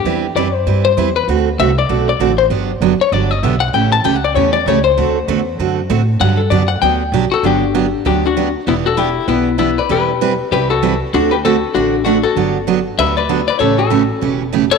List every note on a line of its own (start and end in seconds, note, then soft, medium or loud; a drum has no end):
0.00 0.21 G4 loud
0.04 0.34 E2 medium
0.04 0.25 E3 medium
0.04 0.25 G3 medium
0.04 0.25 C4 medium
0.04 0.25 E4 medium
0.04 0.25 B4 medium
0.35 0.65 F#2 medium
0.35 0.47 E3 medium
0.35 0.47 G3 medium
0.35 0.47 C4 medium
0.35 0.47 E4 medium
0.35 0.47 B4 medium
0.35 0.54 D5 medium
0.54 0.84 C5 medium
0.66 0.96 G2 medium
0.66 0.86 E3 medium
0.66 0.86 G3 medium
0.66 0.87 C4 medium
0.66 0.87 E4 medium
0.66 0.87 B4 medium
0.85 1.13 C5 medium
0.97 1.27 E2 medium
0.97 1.08 E3 medium
0.97 1.08 G3 medium
0.97 1.08 C4 medium
0.97 1.08 E4 medium
0.97 1.09 B4 medium
1.16 1.28 B4 medium
1.28 1.58 D2 medium
1.28 1.48 D3 medium
1.28 1.48 A3 medium
1.28 1.48 C4 medium
1.28 1.48 F#4 medium
1.28 1.48 A4 medium
1.59 1.88 C2 medium
1.59 1.70 D3 medium
1.59 1.70 A3 medium
1.59 1.70 C4 medium
1.59 1.70 F#4 medium
1.59 1.70 A4 medium
1.59 1.77 E5 medium
1.79 2.07 D5 loud
1.89 2.19 B1 medium
1.89 2.09 D3 medium
1.89 2.09 A3 medium
1.89 2.09 C4 medium
1.89 2.09 F#4 medium
1.89 2.10 A4 medium
2.09 2.37 D5 medium
2.19 2.50 A1 medium
2.19 2.31 D3 medium
2.19 2.31 A3 medium
2.19 2.31 C4 medium
2.19 2.31 F#4 medium
2.19 2.32 A4 medium
2.38 2.46 C5 loud
2.50 2.80 G1 medium
2.50 2.70 D3 medium
2.50 2.71 F#3 medium
2.50 2.71 B3 medium
2.50 2.71 D4 medium
2.50 2.71 G4 medium
2.81 2.98 F#1 medium
2.81 2.92 D3 medium
2.81 2.93 F#3 medium
2.81 2.93 B3 medium
2.81 2.93 D4 medium
2.81 2.93 G4 medium
3.00 3.12 C#5 medium
3.00 muted upright bass stroke soft
3.12 3.42 G1 medium
3.12 3.32 D3 medium
3.12 3.32 F#3 medium
3.12 3.33 B3 medium
3.12 3.33 D4 medium
3.12 3.33 G4 medium
3.12 3.31 D5 medium
3.31 3.44 D#5 medium
3.43 3.73 B1 loud
3.43 3.54 D3 medium
3.43 3.54 F#3 medium
3.43 3.54 B3 medium
3.43 3.55 D4 medium
3.43 3.54 G4 medium
3.43 3.62 E5 medium
3.60 3.73 F#5 loud
3.73 4.04 A1 medium
3.73 3.94 C#3 medium
3.73 3.94 E3 medium
3.73 3.94 A3 medium
3.73 3.94 C#4 medium
3.73 3.94 G4 medium
3.73 3.92 G5 medium
3.92 4.04 A5 loud
4.04 4.35 C#2 medium
4.04 4.15 C#3 medium
4.04 4.16 E3 medium
4.04 4.16 A3 medium
4.04 4.16 C#4 medium
4.04 4.16 G4 loud
4.04 4.15 G5 medium
4.15 4.25 F#5 medium
4.24 4.35 D5 medium
4.35 4.65 E2 medium
4.35 4.56 C#3 medium
4.35 4.56 E3 medium
4.35 4.56 A3 medium
4.35 4.56 C#4 medium
4.35 4.56 G4 medium
4.35 4.52 C#5 medium
4.53 4.65 D5 loud
4.66 4.96 C#2 loud
4.66 4.78 C#3 medium
4.66 4.78 E3 medium
4.66 4.78 A3 medium
4.66 4.78 C#4 medium
4.66 4.78 G4 medium
4.66 4.83 C#5 medium
4.84 5.54 C5 loud
4.97 5.27 D2 medium
4.97 5.17 D3 medium
4.97 5.17 A3 medium
4.97 5.17 C4 medium
4.97 5.18 F#4 medium
4.97 5.18 A4 medium
5.28 5.58 E2 medium
5.28 5.39 D3 medium
5.28 5.39 A3 medium
5.28 5.39 C4 medium
5.28 5.39 F#4 medium
5.28 5.39 A4 medium
5.59 5.89 F#2 medium
5.59 5.79 D3 medium
5.59 5.79 A3 medium
5.59 5.79 C4 medium
5.59 5.79 F#4 medium
5.59 5.79 A4 medium
5.90 6.20 A2 loud
5.90 6.01 D3 medium
5.90 6.00 A3 medium
5.90 6.01 C4 medium
5.90 6.01 F#4 medium
5.90 6.01 A4 medium
6.20 6.50 G2 medium
6.20 6.40 D3 medium
6.20 6.40 F#3 medium
6.20 6.40 B3 medium
6.20 6.40 D4 medium
6.20 6.41 G4 medium
6.20 6.39 F#5 medium
6.37 6.50 A4 medium
6.50 6.81 F#2 loud
6.50 6.62 D3 medium
6.50 6.62 F#3 medium
6.50 6.62 B3 medium
6.50 6.62 D4 medium
6.50 6.62 G4 medium
6.50 6.69 D5 medium
6.68 6.81 F#5 loud
6.82 7.12 D2 medium
6.82 7.02 D3 medium
6.82 7.02 F#3 medium
6.82 7.02 B3 medium
6.82 7.02 D4 medium
6.82 7.02 G4 medium
6.82 7.33 G5 medium
7.12 7.30 B1 loud
7.12 7.24 D3 medium
7.12 7.24 F#3 medium
7.12 7.24 B3 medium
7.12 7.24 D4 medium
7.12 7.24 G4 medium
7.31 7.43 F#4 medium
7.31 7.45 A4 medium
7.31 muted upright bass stroke soft
7.43 7.93 G1 medium
7.43 7.63 D3 medium
7.43 7.63 F#3 medium
7.43 7.64 B3 medium
7.43 7.64 D4 medium
7.43 8.02 D4 medium
7.43 7.64 G4 medium
7.43 8.05 G4 medium
7.75 7.85 D3 medium
7.75 7.85 F#3 medium
7.75 7.85 B3 medium
7.75 7.85 D4 medium
7.75 7.85 G4 medium
8.05 8.54 D2 medium
8.05 8.25 D3 medium
8.05 8.25 F#3 medium
8.05 8.25 B3 medium
8.05 8.25 D4 medium
8.05 8.23 D4 medium
8.05 8.25 G4 medium
8.26 8.53 D4 medium
8.26 8.54 F#4 medium
8.37 8.47 D3 medium
8.37 8.47 F#3 medium
8.37 8.47 B3 medium
8.37 8.48 D4 medium
8.37 8.48 G4 medium
8.67 9.16 E1 medium
8.67 8.87 E3 medium
8.67 8.87 B3 medium
8.67 8.73 B3 medium
8.67 8.87 D4 medium
8.67 8.73 E4 medium
8.67 8.87 G4 medium
8.86 8.97 F#4 medium
8.86 8.99 A4 medium
8.97 9.08 E3 medium
8.97 9.08 B3 medium
8.97 9.08 D4 medium
8.97 9.26 E4 medium
8.97 9.09 G4 medium
8.97 9.27 G4 medium
9.28 9.77 B1 medium
9.28 9.48 E3 medium
9.28 9.57 B3 medium
9.28 9.48 B3 medium
9.28 9.48 D4 medium
9.28 9.57 E4 medium
9.28 9.48 G4 medium
9.58 9.69 E3 medium
9.58 9.70 B3 medium
9.58 9.76 B3 medium
9.58 9.70 D4 medium
9.58 9.78 E4 medium
9.58 9.70 G4 medium
9.78 9.89 B4 medium
9.78 9.91 D5 medium
9.89 10.39 E1 medium
9.89 10.10 E3 medium
9.89 10.09 G3 medium
9.89 10.10 C4 medium
9.89 10.10 E4 medium
9.89 10.48 G4 medium
9.89 10.10 B4 medium
9.89 10.48 B4 medium
10.21 10.32 E3 medium
10.21 10.32 G3 medium
10.21 10.32 C4 medium
10.21 10.32 E4 medium
10.21 10.32 B4 loud
10.51 11.01 C2 medium
10.51 10.72 E3 medium
10.51 10.72 G3 medium
10.51 10.72 C4 medium
10.51 10.72 E4 medium
10.51 10.69 G4 medium
10.51 10.70 B4 medium
10.51 10.72 B4 medium
10.70 10.99 F#4 medium
10.70 10.99 A4 medium
10.82 10.93 E3 medium
10.82 10.93 G3 medium
10.82 10.94 C4 medium
10.82 10.94 E4 medium
10.82 10.94 B4 medium
11.13 11.63 D2 medium
11.13 11.33 D3 medium
11.13 11.33 A3 medium
11.13 11.33 C4 medium
11.13 11.31 D4 medium
11.13 11.34 F#4 medium
11.13 11.32 F#4 medium
11.13 11.34 A4 medium
11.31 11.37 G4 medium
11.31 11.36 B4 medium
11.45 11.55 D3 medium
11.45 11.55 A3 medium
11.45 11.55 C4 medium
11.45 11.56 F#4 medium
11.45 11.73 F#4 medium
11.45 11.76 A4 medium
11.45 11.56 A4 medium
11.75 12.24 A1 medium
11.75 11.95 D3 soft
11.75 11.95 A3 medium
11.75 11.95 C4 medium
11.75 12.04 D4 medium
11.75 12.03 F#4 medium
11.75 11.95 F#4 medium
11.75 11.96 A4 medium
12.05 12.16 D3 medium
12.05 12.17 A3 medium
12.05 12.17 C4 medium
12.05 12.23 D4 medium
12.05 12.23 F#4 medium
12.05 12.17 F#4 medium
12.05 12.17 A4 medium
12.23 12.82 F#4 medium
12.23 12.81 A4 medium
12.36 12.85 G1 medium
12.36 12.56 D3 medium
12.36 12.56 F#3 medium
12.36 12.57 B3 medium
12.36 12.57 D4 medium
12.36 12.57 G4 medium
12.67 12.78 D3 medium
12.67 12.78 F#3 medium
12.67 12.78 B3 medium
12.67 12.78 D4 medium
12.67 12.79 G4 medium
12.98 13.47 D2 medium
12.98 13.18 D3 medium
12.98 13.18 F#3 medium
12.98 13.19 B3 medium
12.98 13.19 D4 medium
12.98 13.19 G4 medium
12.98 13.16 B4 medium
12.98 13.16 E5 loud
13.17 13.46 B4 medium
13.17 13.47 D5 medium
13.29 13.40 D3 medium
13.29 13.40 F#3 medium
13.29 13.40 B3 medium
13.29 13.40 D4 medium
13.29 13.40 G4 medium
13.48 13.60 B4 medium
13.48 13.58 D5 loud
13.59 14.09 A1 medium
13.59 13.80 C#3 medium
13.59 13.80 E3 medium
13.59 13.80 A3 medium
13.59 13.80 C#4 medium
13.59 13.80 G4 medium
13.59 13.77 A4 medium
13.59 13.79 C#5 medium
13.78 14.36 F#4 medium
13.78 14.36 A4 medium
13.90 14.01 C#3 medium
13.90 14.01 E3 medium
13.90 14.02 A3 medium
13.90 14.02 C#4 medium
13.90 14.02 G4 medium
14.21 14.71 E1 medium
14.21 14.41 C#3 medium
14.21 14.42 E3 medium
14.21 14.42 A3 medium
14.21 14.42 C#4 medium
14.21 14.42 G4 medium
14.52 14.63 C#3 medium
14.52 14.63 E3 medium
14.52 14.64 A3 medium
14.52 14.64 C#4 medium
14.52 14.64 G4 medium
14.71 14.78 A4 medium
14.71 14.78 D5 loud